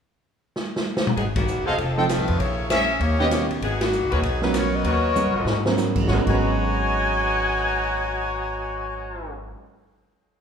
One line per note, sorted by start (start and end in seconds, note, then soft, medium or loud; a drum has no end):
0.56 snare medium
0.76 snare medium
0.97 snare medium
1.07 mid tom medium
1.17 1.55 G#1 medium
1.17 1.26 F#3 medium
1.17 1.26 B3 medium
1.17 1.26 D#4 medium
1.17 1.25 G#4 medium
1.17 ride soft
1.36 1.64 D#3 medium
1.36 1.64 A#3 medium
1.36 1.64 B3 medium
1.36 1.64 F#4 medium
1.36 kick medium
1.36 ride medium
1.48 hi-hat pedal soft
1.59 1.68 F#1 medium
1.66 1.78 E1 medium
1.66 1.78 F#3 medium
1.66 1.78 B3 medium
1.66 1.77 D#4 medium
1.66 1.78 G#4 medium
1.66 1.74 A4 medium
1.66 1.74 C5 medium
1.66 1.74 D#5 medium
1.66 1.74 F5 medium
1.78 2.16 F1 medium
1.78 2.09 F3 medium
1.78 2.09 C4 medium
1.78 2.07 D#4 medium
1.78 2.09 A4 medium
1.78 ride soft
1.97 2.37 F3 medium
1.97 2.38 C4 medium
1.97 2.38 D#4 medium
1.97 2.05 A4 medium
1.97 2.38 A4 medium
1.97 2.05 C5 medium
1.97 2.05 D#5 medium
1.97 2.05 G5 medium
2.08 2.39 A3 medium
2.08 2.39 D#4 medium
2.08 2.39 F4 medium
2.08 2.39 B4 medium
2.08 snare medium
2.08 hi-hat pedal medium
2.08 ride medium
2.18 2.28 C2 medium
2.28 2.38 F2 medium
2.28 ride soft
2.39 2.97 A#1 medium
2.39 2.70 A#3 medium
2.39 2.70 E4 medium
2.39 2.70 G#4 medium
2.39 2.70 C#5 medium
2.39 ride soft
2.70 2.99 C#4 medium
2.70 2.83 G#4 medium
2.70 2.99 G#4 medium
2.70 2.83 A#4 medium
2.70 2.99 A#4 medium
2.70 2.83 C#5 medium
2.70 2.83 E5 medium
2.70 2.99 E5 loud
2.70 snare medium
2.70 hi-hat pedal medium
2.70 ride medium
3.00 3.46 D#2 medium
3.00 3.50 A#3 medium
3.00 3.50 D#4 medium
3.00 3.50 G4 medium
3.00 3.50 C#5 medium
3.00 ride soft
3.19 3.60 B2 medium
3.19 3.60 D#3 medium
3.19 3.60 C#4 medium
3.19 3.27 G4 medium
3.19 3.60 G4 medium
3.19 3.27 B4 medium
3.19 3.27 C#5 medium
3.19 3.27 D#5 medium
3.31 snare medium
3.31 hi-hat pedal medium
3.31 ride medium
3.49 muted upright bass stroke soft
3.49 ride soft
3.61 4.00 G#1 medium
3.61 3.80 F#3 medium
3.61 3.80 B3 medium
3.61 3.80 D#4 medium
3.61 3.80 G#4 medium
3.61 ride medium
3.81 4.12 D#3 medium
3.81 4.12 A#3 medium
3.81 4.12 B3 medium
3.81 4.12 F#4 medium
3.81 snare medium
3.81 ride medium
3.93 hi-hat pedal soft
4.03 4.12 C#2 medium
4.11 4.22 D#2 medium
4.11 4.43 F#3 medium
4.11 4.43 B3 medium
4.11 4.43 D#4 medium
4.11 4.19 F#4 medium
4.11 4.43 G#4 medium
4.11 4.19 A#4 medium
4.11 4.19 B4 medium
4.11 4.19 C#5 medium
4.11 ride soft
4.22 4.81 B1 medium
4.22 ride soft
4.42 4.82 F#3 medium
4.42 4.55 F#3 medium
4.42 4.55 A#3 medium
4.42 4.83 B3 medium
4.42 4.83 C#4 medium
4.42 4.55 D#4 medium
4.42 4.83 A#4 medium
4.42 4.55 B4 medium
4.42 snare medium
4.54 4.74 B3 medium
4.54 4.75 F#4 medium
4.54 4.74 A#4 medium
4.54 4.75 C#5 medium
4.54 snare medium
4.54 hi-hat pedal medium
4.54 ride medium
4.76 5.79 B3 medium
4.76 5.79 F#4 medium
4.76 5.79 A#4 medium
4.76 5.79 D#5 medium
4.84 5.23 D#2 medium
4.84 5.70 B3 medium
4.84 5.70 F#4 medium
4.84 5.70 A#4 medium
4.84 5.70 C#5 medium
4.84 ride medium
5.16 hi-hat pedal medium
5.16 high tom soft
5.25 5.34 C#2 medium
5.35 5.44 A1 medium
5.45 6.04 G#2 medium
5.45 snare medium
5.66 6.05 F#3 medium
5.66 6.06 B3 medium
5.66 6.06 C#4 medium
5.66 6.07 A#4 medium
5.66 snare medium
5.77 snare medium
5.77 hi-hat pedal medium
5.96 kick medium
5.96 crash medium
6.03 6.17 G#2 medium
6.03 6.18 F#3 soft
6.08 6.19 G#1 medium
6.08 6.20 B3 medium
6.08 6.19 F#4 medium
6.08 6.19 A#4 medium
6.08 6.19 B4 medium
6.08 6.19 C#5 medium
6.08 6.20 D#5 medium
6.08 6.20 G#5 medium
6.08 kick medium
6.08 snare medium
6.12 6.21 C#4 medium
6.12 6.23 A#4 medium
6.22 9.52 G#2 medium
6.22 9.55 F#3 medium
6.27 9.53 G#1 medium
6.27 9.58 B3 medium
6.27 9.61 C#4 medium
6.27 9.34 F#4 medium
6.27 9.31 F#4 medium
6.27 9.31 B4 medium
6.27 9.34 C#5 loud
6.27 9.31 D#5 medium
6.27 9.31 G#5 medium
6.27 9.34 A#5 medium
6.27 kick medium
6.27 crash medium
6.34 9.64 B4 medium